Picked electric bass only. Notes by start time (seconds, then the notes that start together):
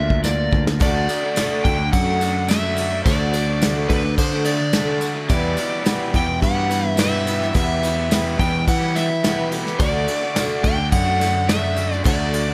Already playing: D2
0.53 D2
0.81 D2
1.65 D2
1.93 F#2
3.06 D2
3.89 D2
4.18 D3
5.30 E2
6.14 E2
6.42 G2
7.55 E2
8.39 E2
8.68 E3
9.80 D2
10.64 D2
10.92 F#2
12.06 D2